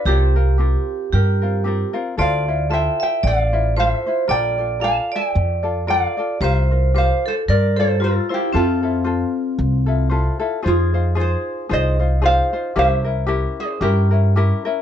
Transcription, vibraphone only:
X:1
M:4/4
L:1/8
Q:"Swing" 1/4=113
K:F
V:1 name="Vibraphone"
G4 G3 z | d2 e e d2 c2 | d2 f d3 d2 | c2 c A B A F E |
C6 z2 | [K:Fm] z8 | z8 |]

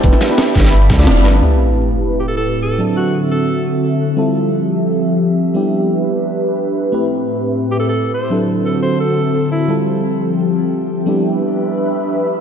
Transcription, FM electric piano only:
X:1
M:4/4
L:1/16
Q:"Swing 16ths" 1/4=174
K:Am
V:1 name="FM electric piano"
[B,DEGB]3 [B,DEGB]4- [B,DEGB] z3 [A,DEFd]3 [A,DEFB]2 | [A,CEGB]16 | [^F,CDEA]16 | [G,CEFA]16 |
[G,B,DEG]16 | [A,CEGB]16 | [^F,CDEA]16 | [G,CEFA]16 |
[G,B,DEG]16 |]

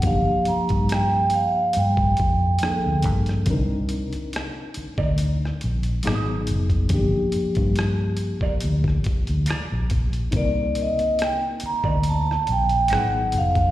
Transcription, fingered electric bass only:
X:1
M:4/4
L:1/16
Q:"Swing 16ths" 1/4=70
K:Cm
V:1 name="Fingered electric bass" clef=bass
G,,, z2 G,,4 z G,,2 F,,2 z D,, G,,2 | C,,3 z4 D,,3 B,,,2 A,,,2 F,,,2 | G,,, z2 G,,4 z D,,2 z D,, z B,,, B,,,2 | C,,3 z4 D,,3 B,,,2 A,,,2 F,,,2 |]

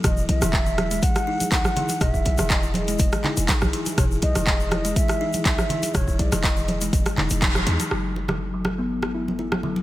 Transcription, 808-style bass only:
X:1
M:4/4
L:1/16
Q:1/4=122
K:E
V:1 name="808-style bass" clef=bass
E,,,2 B,,, E,,,4- E,,, z4 B,,, z3 | E,,,2 B,,, E,,,4- E,,, E,,, z2 E,,, z B,,, z2 | E,,,2 B,,, E,,,4- E,,, z4 B,,, z3 | E,,,2 B,,, E,,,4- E,,, E,,, z E,,, E,,,3 E,, z |
F,,,16 |]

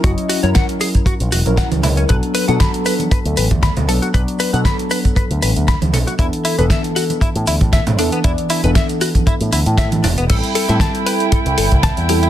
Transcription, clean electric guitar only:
X:1
M:4/4
L:1/16
Q:"Swing 16ths" 1/4=117
K:Em
V:1 name="Clean electric guitar"
F z F ^c f z ^G z F z F z f z E ^C | B z B f b z B z B z B z b z A F | B z B f b z B z B z B z b z A F | E z E B e z F z E z E z e z D B, |
E z E B e z F z E z E z e z D B, | A z A e a z B z A z A z a z G E |]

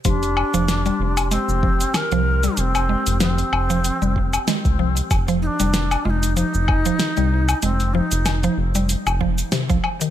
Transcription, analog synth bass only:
X:1
M:4/4
L:1/16
Q:"Swing 16ths" 1/4=95
K:Fdor
V:1 name="Analog synth bass" clef=bass
F,,,2 z F,,,2 z F,,,2 z F,,,2 z2 C,,2 z | F,,,2 z F,,,2 z F,,,2 z F,,,2 z2 C,,2 z | F,,,2 z F,,,2 z F,,,2 z F,,,2 z2 C,,2 z | F,,,2 z F,,,2 z F,,,2 z F,,,2 z2 C,, z2 |]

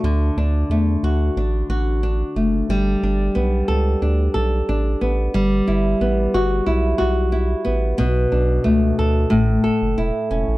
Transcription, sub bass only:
X:1
M:4/4
L:1/16
Q:1/4=91
K:D
V:1 name="Sub bass" clef=bass
D,,2 D,,2 E,,2 D,,2 A,,,2 A,,,4 F,,,2 | G,,,2 G,,,2 B,,,2 C,,2 D,,2 B,,,2 A,,,2 A,,,2 | G,,,2 G,,,2 A,,,2 G,,,2 B,,,2 B,,,4 A,,,2 | B,,,2 B,,,2 C,,2 D,,2 A,,,2 F,,, F,,, E,,, z E,,, A,,, |]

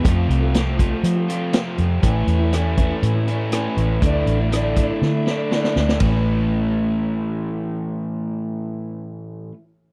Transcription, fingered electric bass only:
X:1
M:4/4
L:1/8
Q:1/4=121
K:A
V:1 name="Fingered electric bass" clef=bass
=F,, =C,,3 =F,3 F,, | A,,, E,,3 A,,3 A,,, | D,, A,,,3 D,3 D,, | A,,,8- |
A,,,8 |]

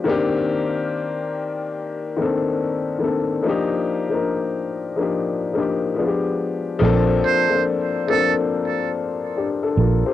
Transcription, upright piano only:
X:1
M:4/4
L:1/16
Q:"Swing 16ths" 1/4=71
K:Bb
V:1 name="Upright piano"
[E,B,CDG]6 z4 [E,B,CDA]3 z [E,B,CDA]2 | [F,B,DEG]2 z [F,B,DEB]3 z [F,B,DEG]2 z [F,B,DEG]2 [F,_A,=B,DFG]3 z | [F,B,CDA]2 z [F,B,CDA]2 z [F,B,CDA]6 [DG] [DA] [FB] [Gc] |]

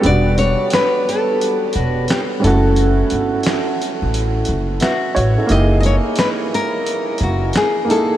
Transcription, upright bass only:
X:1
M:4/4
L:1/16
Q:"Swing 16ths" 1/4=88
K:F#phr
V:1 name="Upright bass" clef=bass
E,,,3 z6 z E,,,2 z2 F,,,2- | F,,,2 G,,, z4 A,,,3 F,,,2 z2 A,,, z | F,,,3 z6 z F,,,2 z4 |]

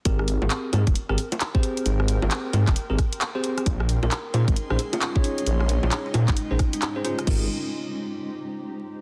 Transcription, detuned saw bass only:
X:1
M:4/4
L:1/16
Q:"Swing 16ths" 1/4=133
K:Ab
V:1 name="Detuned saw bass" clef=bass
A,,,3 A,,, z2 A,, E,,, z A,,, z6 | A,,,3 A,,, z2 A,, E,,, z A,,, z6 | B,,,3 B,,, z2 B,, A,,, z B,,, z6 | B,,,3 B,,, z2 B,, A,,, z B,,, z6 |
A,,,2 z12 z2 |]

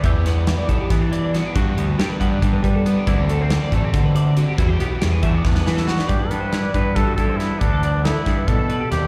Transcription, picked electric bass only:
X:1
M:7/8
L:1/8
Q:1/4=139
K:G
V:1 name="Picked electric bass" clef=bass
E,,3 B,,, E,3 | G,, D,, G,, G,, G,, G,2 | D,,3 A,,, D,3 | E,, B,,, E,, E,, E,, E,2 |
G,, G,,2 G,, G,, G,,2 | D,,3 G,, B,,2 ^D,, |]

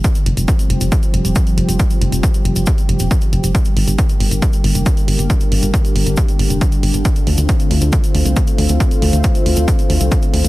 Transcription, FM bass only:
X:1
M:4/4
L:1/16
Q:1/4=137
K:Gm
V:1 name="FM bass" clef=bass
z2 F,,, F,,, z2 F,,, F,,, z2 F,,, E,,, z2 F,,, F,,, | z2 F,,, F,,, z2 F,,, F,,, z2 F,,, E,,, z2 F,,, F,,, | z2 G,,, G,,, z2 G,,, G,,, z2 G,,, F,,, z2 G,,, G,,, | z2 G,,, G,,, z2 G,,, G,,, z2 G,,, F,,, z2 G,,, G,,, |
z2 D,, D,, z2 D,, D,, z2 D,, C,, z2 D,, D,, | z2 D,, D,, z2 D,, D,, z2 D,, C,, z2 D,, D,, |]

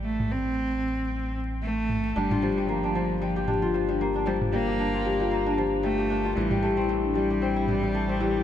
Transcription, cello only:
X:1
M:4/4
L:1/8
Q:"Swing 16ths" 1/4=114
K:Gdor
V:1 name="Cello" clef=bass
A, C4 z A,2 | G,2 F,2 F,3 z | G, B,4 z A,2 | G,2 z G,4- G, |]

